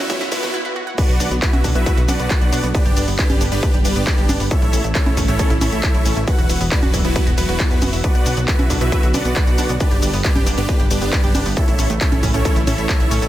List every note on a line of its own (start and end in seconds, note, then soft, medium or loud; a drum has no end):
0.00 0.51 E3 medium
0.00 0.53 F#3 medium
0.00 0.53 B3 medium
0.00 0.22 C#4 medium
0.00 0.22 E4 medium
0.00 0.22 F#4 medium
0.00 0.53 F#4 medium
0.00 0.22 C#5 loud
0.00 riser medium
0.10 0.13 E5 loud
0.10 kick loud
0.10 snare loud
0.10 closed hi-hat medium
0.10 shaker soft
0.21 0.30 E1 medium
0.21 0.26 B4 medium
0.21 snare medium
0.21 closed hi-hat soft
0.21 shaker soft
0.32 0.41 E1 loud
0.32 0.54 B3 medium
0.32 0.54 E4 medium
0.32 0.40 E4 medium
0.32 0.54 F#4 medium
0.32 0.54 B4 loud
0.32 kick medium
0.32 snare loud
0.32 open hi-hat loud
0.32 shaker medium
0.43 0.52 E1 medium
0.43 0.51 F#4 medium
0.43 snare medium
0.43 closed hi-hat soft
0.43 shaker soft
0.54 0.59 E4 loud
0.65 0.70 B4 medium
0.76 0.81 F#4 medium
0.87 0.95 F#5 medium
0.98 4.47 D3 medium
0.98 2.73 F#3 medium
0.98 4.47 B3 medium
0.98 2.73 F#4 medium
0.98 1.29 F#4 medium
0.98 1.03 B4 medium
0.98 1.29 B4 medium
0.98 1.29 D5 medium
0.98 1.29 F#5 loud
0.98 kick loud
0.98 closed hi-hat medium
0.98 crash loud
0.98 shaker soft
1.09 1.18 B1 medium
1.09 1.14 F#4 medium
1.09 closed hi-hat soft
1.09 shaker soft
1.20 1.29 B1 medium
1.20 1.25 D4 medium
1.20 open hi-hat loud
1.20 shaker medium
1.31 1.40 B1 medium
1.31 1.39 B3 medium
1.31 closed hi-hat soft
1.31 shaker soft
1.42 1.66 E4 medium
1.42 1.66 F#4 medium
1.42 1.47 B4 medium
1.42 1.66 B4 medium
1.42 1.66 E5 loud
1.42 kick loud
1.42 clap loud
1.42 closed hi-hat medium
1.42 shaker soft
1.53 1.62 B1 medium
1.53 1.58 F#4 loud
1.53 closed hi-hat soft
1.53 high conga medium
1.53 shaker soft
1.64 1.74 B1 loud
1.64 1.72 D4 loud
1.64 kick medium
1.64 open hi-hat loud
1.64 shaker medium
1.75 1.85 B1 loud
1.75 1.78 B3 medium
1.75 1.99 E4 medium
1.75 1.99 F#4 medium
1.75 1.99 B4 medium
1.75 1.99 E5 loud
1.75 closed hi-hat soft
1.75 shaker soft
1.86 1.91 B4 medium
1.86 kick loud
1.86 closed hi-hat medium
1.86 shaker soft
1.97 2.07 B1 medium
1.97 2.02 F#4 medium
1.97 closed hi-hat soft
1.97 shaker soft
2.08 2.18 B1 loud
2.08 2.14 D4 medium
2.08 2.66 F#4 medium
2.08 2.66 B4 medium
2.08 2.66 D5 medium
2.08 2.66 F#5 loud
2.08 open hi-hat loud
2.08 high conga medium
2.08 shaker medium
2.19 2.29 B1 medium
2.19 2.27 B3 medium
2.19 closed hi-hat soft
2.19 shaker soft
2.30 2.36 B4 medium
2.30 kick loud
2.30 clap loud
2.30 closed hi-hat medium
2.30 shaker soft
2.41 2.51 B1 medium
2.41 2.47 F#4 loud
2.41 closed hi-hat soft
2.41 shaker soft
2.52 2.62 B1 medium
2.52 2.60 D4 loud
2.52 open hi-hat loud
2.52 shaker medium
2.63 2.73 B1 medium
2.63 2.67 B3 medium
2.63 closed hi-hat soft
2.63 shaker soft
2.74 4.49 G3 medium
2.74 3.06 D4 medium
2.74 3.06 G4 medium
2.74 4.49 G4 medium
2.74 3.06 B4 medium
2.74 2.80 B4 medium
2.74 3.06 D5 loud
2.74 kick loud
2.74 closed hi-hat medium
2.74 shaker soft
2.86 2.95 G1 medium
2.86 2.91 G4 medium
2.86 closed hi-hat soft
2.86 shaker soft
2.97 3.06 G1 medium
2.97 3.02 D4 medium
2.97 open hi-hat loud
2.97 shaker medium
3.08 3.17 G1 medium
3.08 3.15 B3 medium
3.08 open hi-hat medium
3.08 shaker soft
3.19 3.42 D4 medium
3.19 3.42 G4 medium
3.19 3.42 B4 medium
3.19 3.24 B4 medium
3.19 3.42 D5 loud
3.19 kick loud
3.19 clap loud
3.19 closed hi-hat medium
3.19 shaker soft
3.30 3.39 G1 medium
3.30 3.35 G4 loud
3.30 closed hi-hat soft
3.30 high conga medium
3.30 shaker soft
3.41 3.50 G1 loud
3.41 3.48 D4 loud
3.41 open hi-hat loud
3.41 shaker medium
3.52 3.61 G1 medium
3.52 3.55 B3 medium
3.52 3.75 D4 medium
3.52 3.75 G4 medium
3.52 3.75 B4 medium
3.52 3.75 D5 loud
3.52 closed hi-hat soft
3.52 shaker soft
3.63 3.68 B4 medium
3.63 kick loud
3.63 closed hi-hat medium
3.63 shaker soft
3.74 3.83 G1 medium
3.74 3.79 G4 medium
3.74 closed hi-hat soft
3.74 shaker soft
3.85 3.94 G1 loud
3.85 4.42 D4 medium
3.85 3.90 D4 medium
3.85 4.42 G4 medium
3.85 4.42 B4 medium
3.85 4.42 D5 medium
3.85 open hi-hat loud
3.85 shaker medium
3.96 4.05 G1 medium
3.96 4.04 B3 medium
3.96 closed hi-hat soft
3.96 shaker soft
4.07 4.12 B4 medium
4.07 kick loud
4.07 clap loud
4.07 closed hi-hat medium
4.07 shaker soft
4.18 4.27 G1 medium
4.18 4.23 G4 medium
4.18 closed hi-hat soft
4.18 shaker soft
4.29 4.38 G1 loud
4.29 4.37 D4 loud
4.29 open hi-hat loud
4.29 high conga medium
4.29 shaker medium
4.40 4.49 G1 medium
4.40 4.43 B3 medium
4.40 open hi-hat medium
4.40 shaker soft
4.51 6.26 C#3 medium
4.51 8.00 E3 medium
4.51 6.26 A3 medium
4.51 4.82 E4 medium
4.51 6.26 E4 medium
4.51 4.82 A4 medium
4.51 4.56 A4 medium
4.51 4.82 C#5 medium
4.51 4.82 E5 loud
4.51 kick loud
4.51 closed hi-hat medium
4.51 shaker soft
4.62 4.71 A1 medium
4.62 4.67 E4 medium
4.62 closed hi-hat soft
4.62 shaker soft
4.73 4.82 A1 loud
4.73 4.78 C#4 medium
4.73 open hi-hat loud
4.73 shaker medium
4.84 4.93 A1 medium
4.84 4.92 A3 medium
4.84 closed hi-hat soft
4.84 shaker soft
4.95 5.18 C#4 medium
4.95 5.18 E4 medium
4.95 5.00 A4 medium
4.95 5.18 A4 medium
4.95 5.18 C#5 loud
4.95 kick loud
4.95 clap loud
4.95 closed hi-hat medium
4.95 shaker soft
5.06 5.16 A1 medium
5.06 5.11 E4 loud
5.06 closed hi-hat soft
5.06 high conga medium
5.06 shaker soft
5.17 5.27 A1 loud
5.17 5.25 C#4 loud
5.17 kick medium
5.17 open hi-hat loud
5.17 shaker medium
5.28 5.38 A1 medium
5.28 5.31 A3 medium
5.28 5.52 C#4 medium
5.28 5.52 E4 medium
5.28 5.52 A4 medium
5.28 5.52 C#5 medium
5.28 closed hi-hat soft
5.28 shaker soft
5.39 5.44 A4 medium
5.39 kick loud
5.39 closed hi-hat medium
5.39 shaker soft
5.50 5.60 A1 medium
5.50 5.55 E4 medium
5.50 closed hi-hat soft
5.50 shaker soft
5.61 5.71 A1 loud
5.61 5.66 C#4 medium
5.61 6.19 E4 medium
5.61 6.19 A4 medium
5.61 6.19 C#5 medium
5.61 6.19 E5 loud
5.61 open hi-hat loud
5.61 high conga medium
5.61 shaker medium
5.72 5.82 A1 medium
5.72 5.80 A3 medium
5.72 closed hi-hat soft
5.72 shaker soft
5.83 5.88 A4 medium
5.83 kick loud
5.83 clap loud
5.83 closed hi-hat medium
5.83 shaker soft
5.94 6.04 A1 medium
5.94 6.00 E4 loud
5.94 closed hi-hat soft
5.94 shaker soft
6.05 6.15 A1 medium
6.05 6.13 C#4 loud
6.05 open hi-hat loud
6.05 shaker medium
6.16 6.26 A1 medium
6.16 6.20 A3 medium
6.16 closed hi-hat soft
6.16 shaker soft
6.27 9.77 F#3 medium
6.27 11.53 B3 medium
6.27 9.77 F#4 medium
6.27 6.59 F#4 medium
6.27 6.59 B4 medium
6.27 6.33 B4 medium
6.27 6.59 F#5 loud
6.27 kick loud
6.27 closed hi-hat medium
6.27 shaker soft
6.38 6.48 E1 medium
6.38 6.44 F#4 medium
6.38 closed hi-hat soft
6.38 shaker soft
6.49 6.59 E1 medium
6.49 6.55 E4 medium
6.49 open hi-hat loud
6.49 shaker medium
6.61 6.70 E1 medium
6.61 6.68 B3 medium
6.61 open hi-hat medium
6.61 shaker soft
6.71 6.95 D4 medium
6.71 6.95 F#4 medium
6.71 6.95 B4 medium
6.71 6.77 B4 medium
6.71 6.95 D5 loud
6.71 kick loud
6.71 clap loud
6.71 closed hi-hat medium
6.71 shaker soft
6.83 6.92 E1 medium
6.83 6.88 F#4 loud
6.83 closed hi-hat soft
6.83 high conga medium
6.83 shaker soft
6.93 7.03 E1 loud
6.93 7.01 E4 loud
6.93 kick medium
6.93 open hi-hat loud
6.93 shaker medium
7.05 7.14 E1 medium
7.05 7.28 B3 medium
7.05 7.08 B3 medium
7.05 7.28 E4 medium
7.05 7.28 F#4 medium
7.05 7.28 B4 medium
7.05 closed hi-hat soft
7.05 shaker soft
7.16 7.21 B4 medium
7.16 kick loud
7.16 closed hi-hat medium
7.16 shaker soft
7.27 7.36 E1 medium
7.27 7.32 F#4 medium
7.27 closed hi-hat soft
7.27 shaker soft
7.38 7.47 E1 loud
7.38 7.95 B3 medium
7.38 7.95 E4 medium
7.38 7.95 F#4 medium
7.38 7.95 B4 loud
7.38 7.45 B4 medium
7.38 open hi-hat loud
7.38 shaker medium
7.49 7.58 E1 medium
7.49 7.56 F#4 loud
7.49 closed hi-hat soft
7.49 shaker soft
7.60 7.65 E4 medium
7.60 kick loud
7.60 clap loud
7.60 closed hi-hat medium
7.60 shaker soft
7.71 7.80 E2 medium
7.71 7.74 B4 medium
7.71 closed hi-hat soft
7.71 shaker soft
7.82 7.91 F#1 loud
7.82 7.87 B3 medium
7.82 open hi-hat loud
7.82 high conga medium
7.82 shaker medium
7.93 8.02 E1 medium
7.93 7.96 E5 loud
7.93 open hi-hat medium
7.93 shaker soft
8.04 11.53 D3 medium
8.04 8.35 F#4 medium
8.04 8.35 B4 medium
8.04 8.09 B4 medium
8.04 8.35 D5 medium
8.04 8.35 F#5 loud
8.04 kick loud
8.04 closed hi-hat medium
8.04 shaker soft
8.15 8.24 B1 medium
8.15 8.20 F#4 medium
8.15 closed hi-hat soft
8.15 shaker soft
8.26 8.35 B1 loud
8.26 8.31 D4 medium
8.26 open hi-hat loud
8.26 shaker medium
8.37 8.46 B1 medium
8.37 8.45 B3 medium
8.37 closed hi-hat soft
8.37 shaker soft
8.48 8.71 E4 medium
8.48 8.71 F#4 medium
8.48 8.53 B4 medium
8.48 8.71 B4 medium
8.48 8.71 E5 loud
8.48 kick loud
8.48 clap loud
8.48 closed hi-hat medium
8.48 shaker soft
8.59 8.68 B1 medium
8.59 8.64 F#4 loud
8.59 closed hi-hat soft
8.59 high conga medium
8.59 shaker soft
8.70 8.79 B1 loud
8.70 8.78 D4 loud
8.70 kick medium
8.70 open hi-hat loud
8.70 shaker medium
8.81 8.90 B1 medium
8.81 8.84 B3 medium
8.81 9.04 E4 medium
8.81 9.04 F#4 medium
8.81 9.04 B4 medium
8.81 9.04 E5 loud
8.81 closed hi-hat soft
8.81 shaker soft
8.92 8.97 B4 medium
8.92 kick loud
8.92 closed hi-hat medium
8.92 shaker soft
9.03 9.12 B1 medium
9.03 9.08 F#4 medium
9.03 closed hi-hat soft
9.03 shaker soft
9.14 9.23 B1 loud
9.14 9.19 D4 medium
9.14 9.72 F#4 medium
9.14 9.72 B4 medium
9.14 9.72 D5 medium
9.14 9.72 F#5 loud
9.14 open hi-hat loud
9.14 high conga medium
9.14 shaker medium
9.25 9.34 B1 medium
9.25 9.33 B3 medium
9.25 closed hi-hat soft
9.25 shaker soft
9.36 9.41 B4 medium
9.36 kick loud
9.36 clap loud
9.36 closed hi-hat medium
9.36 shaker soft
9.47 9.57 B1 medium
9.47 9.53 F#4 loud
9.47 closed hi-hat soft
9.47 shaker soft
9.58 9.68 B1 loud
9.58 9.66 D4 loud
9.58 open hi-hat loud
9.58 shaker medium
9.69 9.79 B1 medium
9.69 9.72 B3 medium
9.69 closed hi-hat soft
9.69 shaker soft
9.80 11.55 G3 medium
9.80 10.12 D4 medium
9.80 10.12 G4 medium
9.80 11.55 G4 medium
9.80 9.86 B4 medium
9.80 10.12 B4 medium
9.80 10.12 D5 loud
9.80 kick loud
9.80 closed hi-hat medium
9.80 shaker soft
9.91 10.01 G1 medium
9.91 9.97 G4 medium
9.91 closed hi-hat soft
9.91 shaker soft
10.02 10.12 G1 loud
10.02 10.08 D4 medium
10.02 open hi-hat loud
10.02 shaker medium
10.13 10.23 G1 medium
10.13 10.21 B3 medium
10.13 open hi-hat medium
10.13 shaker soft
10.24 10.48 D4 medium
10.24 10.48 G4 medium
10.24 10.30 B4 medium
10.24 10.48 B4 medium
10.24 10.48 D5 loud
10.24 kick loud
10.24 clap loud
10.24 closed hi-hat medium
10.24 shaker soft
10.36 10.45 G1 medium
10.36 10.41 G4 loud
10.36 closed hi-hat soft
10.36 high conga medium
10.36 shaker soft
10.46 10.56 G1 loud
10.46 10.54 D4 loud
10.46 open hi-hat loud
10.46 shaker medium
10.58 10.67 G1 loud
10.58 10.61 B3 medium
10.58 10.81 D4 medium
10.58 10.81 G4 medium
10.58 10.81 B4 medium
10.58 10.81 D5 medium
10.58 closed hi-hat soft
10.58 shaker soft
10.69 10.74 B4 medium
10.69 kick loud
10.69 closed hi-hat medium
10.69 shaker soft
10.80 10.89 G1 medium
10.80 10.85 G4 medium
10.80 closed hi-hat soft
10.80 shaker soft
10.91 11.00 G1 medium
10.91 11.48 D4 medium
10.91 10.96 D4 medium
10.91 11.48 G4 medium
10.91 11.48 B4 medium
10.91 11.48 D5 loud
10.91 open hi-hat loud
10.91 shaker medium
11.02 11.11 G1 medium
11.02 11.09 B3 medium
11.02 closed hi-hat soft
11.02 shaker soft
11.13 11.18 B4 medium
11.13 kick loud
11.13 clap loud
11.13 closed hi-hat medium
11.13 shaker soft
11.24 11.33 G1 medium
11.24 11.29 G4 loud
11.24 closed hi-hat soft
11.24 shaker soft
11.35 11.44 G1 medium
11.35 11.42 D4 loud
11.35 open hi-hat loud
11.35 high conga medium
11.35 shaker medium
11.46 11.55 G1 loud
11.46 11.49 B3 medium
11.46 open hi-hat medium
11.46 shaker soft
11.57 13.28 C#3 medium
11.57 13.28 E3 medium
11.57 13.28 A3 medium
11.57 13.28 E4 medium
11.57 11.88 E4 medium
11.57 11.62 A4 medium
11.57 11.88 A4 medium
11.57 11.88 C#5 medium
11.57 11.88 E5 loud
11.57 kick loud
11.57 closed hi-hat medium
11.57 shaker soft
11.68 11.77 A1 medium
11.68 11.73 E4 medium
11.68 closed hi-hat soft
11.68 shaker soft
11.79 11.88 A1 medium
11.79 11.84 C#4 medium
11.79 open hi-hat loud
11.79 shaker medium
11.90 11.99 A1 medium
11.90 11.98 A3 medium
11.90 closed hi-hat soft
11.90 shaker soft
12.01 12.24 C#4 medium
12.01 12.24 E4 medium
12.01 12.06 A4 medium
12.01 12.24 A4 medium
12.01 12.24 C#5 loud
12.01 kick loud
12.01 clap loud
12.01 closed hi-hat medium
12.01 shaker soft
12.12 12.21 A1 medium
12.12 12.17 E4 loud
12.12 closed hi-hat soft
12.12 high conga medium
12.12 shaker soft
12.23 12.32 A1 loud
12.23 12.31 C#4 loud
12.23 kick medium
12.23 open hi-hat loud
12.23 shaker medium
12.34 12.43 A1 loud
12.34 12.37 A3 medium
12.34 12.57 C#4 medium
12.34 12.57 E4 medium
12.34 12.57 A4 medium
12.34 12.57 C#5 loud
12.34 closed hi-hat soft
12.34 shaker soft
12.45 12.50 A4 medium
12.45 kick loud
12.45 closed hi-hat medium
12.45 shaker soft
12.56 12.65 A1 medium
12.56 12.61 E4 medium
12.56 closed hi-hat soft
12.56 shaker soft
12.67 12.76 A1 loud
12.67 12.72 C#4 medium
12.67 13.24 E4 medium
12.67 13.24 A4 medium
12.67 13.24 C#5 medium
12.67 13.24 E5 medium
12.67 open hi-hat loud
12.67 high conga medium
12.67 shaker medium
12.78 12.87 A1 medium
12.78 12.86 A3 medium
12.78 closed hi-hat soft
12.78 shaker soft
12.89 12.94 A4 medium
12.89 kick loud
12.89 clap loud
12.89 closed hi-hat medium
12.89 shaker soft
13.00 13.10 A1 medium
13.00 13.05 E4 loud
13.00 closed hi-hat soft
13.00 shaker soft
13.11 13.21 A1 loud
13.11 13.19 C#4 loud
13.11 open hi-hat loud
13.11 shaker medium
13.22 13.28 A1 medium
13.22 13.25 A3 medium
13.22 closed hi-hat soft
13.22 shaker soft